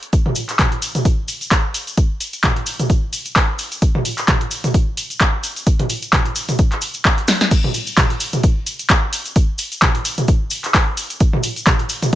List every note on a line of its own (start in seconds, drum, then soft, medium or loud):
0.03 closed hi-hat soft
0.13 kick loud
0.13 closed hi-hat medium
0.13 cabasa soft
0.26 mid tom medium
0.35 open hi-hat loud
0.35 cabasa medium
0.49 clap soft
0.49 closed hi-hat soft
0.49 cabasa medium
0.59 kick loud
0.59 clap loud
0.59 closed hi-hat medium
0.59 mid tom medium
0.59 cabasa soft
0.72 closed hi-hat soft
0.82 open hi-hat loud
0.82 cabasa medium
0.95 closed hi-hat soft
0.95 mid tom medium
0.95 cabasa medium
1.05 kick loud
1.05 closed hi-hat medium
1.05 cabasa soft
1.28 open hi-hat loud
1.28 cabasa medium
1.41 closed hi-hat soft
1.41 cabasa medium
1.51 kick loud
1.51 clap loud
1.51 closed hi-hat medium
1.51 cabasa soft
1.74 open hi-hat loud
1.74 cabasa medium
1.87 closed hi-hat soft
1.87 cabasa medium
1.97 kick loud
1.97 closed hi-hat medium
1.97 cabasa soft
2.21 open hi-hat loud
2.21 cabasa medium
2.33 closed hi-hat medium
2.33 cabasa soft
2.44 kick loud
2.44 clap loud
2.44 closed hi-hat medium
2.44 mid tom medium
2.44 cabasa soft
2.56 closed hi-hat soft
2.66 open hi-hat loud
2.66 cabasa medium
2.79 closed hi-hat soft
2.79 mid tom loud
2.79 cabasa soft
2.90 kick loud
2.90 closed hi-hat medium
2.90 cabasa soft
3.13 open hi-hat loud
3.13 cabasa loud
3.25 closed hi-hat medium
3.25 cabasa medium
3.35 kick loud
3.35 clap loud
3.35 open hi-hat medium
3.35 cabasa soft
3.59 open hi-hat loud
3.59 cabasa medium
3.72 closed hi-hat soft
3.72 cabasa medium
3.82 kick loud
3.82 closed hi-hat medium
3.82 cabasa soft
3.95 mid tom medium
4.05 open hi-hat loud
4.05 cabasa medium
4.17 clap soft
4.17 closed hi-hat medium
4.17 cabasa soft
4.28 kick loud
4.28 clap loud
4.28 closed hi-hat medium
4.28 mid tom medium
4.28 cabasa soft
4.41 closed hi-hat soft
4.51 open hi-hat loud
4.51 cabasa medium
4.64 closed hi-hat medium
4.64 mid tom medium
4.64 cabasa soft
4.74 kick loud
4.74 closed hi-hat medium
4.74 cabasa soft
4.97 open hi-hat loud
4.97 cabasa medium
5.10 closed hi-hat medium
5.10 cabasa medium
5.20 kick loud
5.20 clap loud
5.20 closed hi-hat medium
5.20 cabasa soft
5.43 open hi-hat loud
5.43 cabasa medium
5.56 closed hi-hat medium
5.56 cabasa soft
5.66 kick loud
5.66 closed hi-hat medium
5.66 cabasa soft
5.79 closed hi-hat soft
5.79 mid tom medium
5.90 open hi-hat loud
5.90 cabasa medium
6.02 closed hi-hat medium
6.02 cabasa medium
6.13 kick loud
6.13 clap loud
6.13 closed hi-hat medium
6.13 mid tom medium
6.13 cabasa soft
6.26 closed hi-hat soft
6.35 open hi-hat loud
6.35 cabasa medium
6.49 closed hi-hat medium
6.49 mid tom medium
6.49 cabasa medium
6.59 kick loud
6.59 closed hi-hat medium
6.59 cabasa soft
6.72 clap soft
6.72 closed hi-hat soft
6.81 open hi-hat loud
6.81 cabasa medium
6.94 closed hi-hat medium
6.94 cabasa soft
7.04 kick loud
7.04 clap loud
7.04 open hi-hat medium
7.04 cabasa soft
7.18 closed hi-hat soft
7.28 snare medium
7.28 open hi-hat loud
7.28 cabasa medium
7.41 snare medium
7.41 closed hi-hat medium
7.41 cabasa medium
7.51 kick loud
7.51 closed hi-hat medium
7.51 crash loud
7.51 cabasa soft
7.64 mid tom medium
7.74 open hi-hat loud
7.74 cabasa medium
7.87 closed hi-hat medium
7.87 cabasa medium
7.97 kick loud
7.97 clap loud
7.97 closed hi-hat medium
7.97 mid tom medium
7.97 cabasa soft
8.10 closed hi-hat soft
8.20 open hi-hat loud
8.20 cabasa medium
8.33 closed hi-hat medium
8.33 mid tom medium
8.33 cabasa medium
8.43 kick loud
8.43 closed hi-hat medium
8.43 cabasa soft
8.66 open hi-hat loud
8.66 cabasa medium
8.79 closed hi-hat medium
8.79 cabasa soft
8.89 kick loud
8.89 clap loud
8.89 closed hi-hat medium
8.89 cabasa soft
9.13 open hi-hat loud
9.13 cabasa medium
9.25 closed hi-hat medium
9.25 cabasa medium
9.36 kick loud
9.36 closed hi-hat medium
9.36 cabasa soft
9.58 open hi-hat loud
9.58 cabasa medium
9.72 closed hi-hat medium
9.72 cabasa medium
9.82 kick loud
9.82 clap loud
9.82 closed hi-hat medium
9.82 mid tom medium
9.82 cabasa soft
9.95 closed hi-hat soft
10.05 open hi-hat loud
10.05 cabasa medium
10.18 closed hi-hat medium
10.18 mid tom medium
10.18 cabasa soft
10.28 kick loud
10.28 closed hi-hat medium
10.28 cabasa soft
10.50 open hi-hat loud
10.50 cabasa loud
10.64 clap soft
10.64 closed hi-hat medium
10.64 cabasa medium
10.74 kick loud
10.74 clap loud
10.74 open hi-hat medium
10.74 cabasa soft
10.97 open hi-hat loud
10.97 cabasa medium
11.10 closed hi-hat medium
11.10 cabasa medium
11.20 kick loud
11.20 closed hi-hat medium
11.20 cabasa soft
11.33 mid tom medium
11.43 open hi-hat loud
11.43 cabasa medium
11.56 closed hi-hat medium
11.56 cabasa medium
11.67 kick loud
11.67 clap loud
11.67 closed hi-hat medium
11.67 mid tom medium
11.67 cabasa soft
11.79 closed hi-hat soft
11.89 open hi-hat loud
11.89 cabasa medium
12.02 closed hi-hat soft
12.02 mid tom medium
12.02 cabasa medium